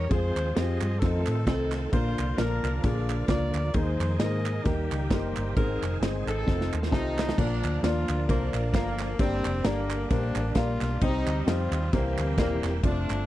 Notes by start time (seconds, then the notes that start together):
0.09 F2 F3 G#3 C4 F4 G#4 C5, kick, ride
0.36 D#2, clap, ride
0.55 F2 G#3 C4 F4 G4 G#4 C5 D#5, snare, ride
0.81 G2, clap, ride
0.99 F2 D#3 A3 C4 D#4 F4 A4, kick, snare, ride
1.03 A4
1.26 A2, clap, ride
1.46 C2 C4 D#4 F4 A4, kick, snare, ride
1.72 snare, clap, ride
1.91 A#1 A#2 D3 F3 A#3 D4 D#4 F4 A#4 C5, kick, ride
1.97 F4
2.19 C2, clap, ride
2.37 A#1 A#3 D4 F4 A#4, snare, ride
2.63 C2, clap, ride
2.82 A#1 A#3 D4 F4 G#4 A#4 D5, kick, snare, ride
3.09 clap, ride
3.28 C#2 A#3 D4 F4 A#4 D5, kick, snare, ride
3.53 D2, clap, ride
3.74 D#2 D#3 G#3 A#3 D#4 G#4 A#4 C5, kick, ride
4.00 F2, clap, ride
4.19 G#2 A#3 D#4 G#4 A#4 C5 D#5, snare, ride
4.46 clap, ride
4.64 D#2 D#3 G3 A#3 D#4 G4 A#4, kick, snare, ride
4.91 C#2, clap, ride
5.10 F#1 A#3 D#4 G4 A#4 C5, kick, snare, ride
5.36 G1, clap, ride
5.56 G#1 G#2 D#3 G#3 C4 D#4 G#4 A#4 C5, kick, ride
5.82 F1, clap, ride
6.01 G1 C4 D#4 G#4 C5, snare, ride
6.27 G#1 C4 D#4 A4, clap, ride
6.46 F1 D#3 A3 C4 D#4 F4 A4, kick, snare
6.61 snare
6.73 D#2, clap
6.83 snare
6.91 C2 A3 C4 D#4 F4 G4 A5, kick, snare
7.18 snare, clap
7.29 snare
7.37 A#1 A#2 F3 A#3 D4 F4 A#4 D5, kick, crash
7.63 D2, clap, ride
7.83 D#2 A#3 D4 F4 A#4 D5, snare, ride
8.09 D2, clap, ride
8.27 C2 D3 F3 A#3 D4 F4 A#4 C5, kick, ride
8.54 A#1, clap, ride
8.73 G1 D3 F3 A#3 D4 F4 A#4 F5, kick, snare, ride
8.99 snare, clap, ride
9.19 G1 G2 G3 A3 A#3 C4 D4 G4 A#4 D5, kick, ride
9.24 A#3
9.45 F1, clap, ride
9.64 G1 D3 G3 A#3 D4 G4 A#4 D5, snare, ride
9.90 clap, ride
10.09 A#1 G3 A#3 D4 G4 A#4 C5, kick, snare, ride
10.35 A1, clap, ride
10.55 A#1 A#3 D4 F4 G4 A#4 F5, kick, snare, ride
10.81 B1, snare, clap, ride
11.01 C2 C3 G3 C4 D#4 G4 C5 D#5, kick, ride
11.26 D2, clap, ride
11.46 F2 C4 D#4 F4 G4 C5 D#5, snare, ride
11.71 D#2, clap, ride
11.92 C2 C3 E3 G3 A#3 C4 E4 F4 G4 A#4 C5, kick, snare, ride
11.98 G4
12.18 D2, clap, ride
12.38 D#1 E3 G3 A#3 C4 E4 G4 A#4 D5, kick, snare, ride
12.63 E1, snare, clap, ride
12.82 F1 F3 G#3 A3 C4 D4 F4 A4 C5, kick, ride
12.89 A3
13.09 G1, clap, ride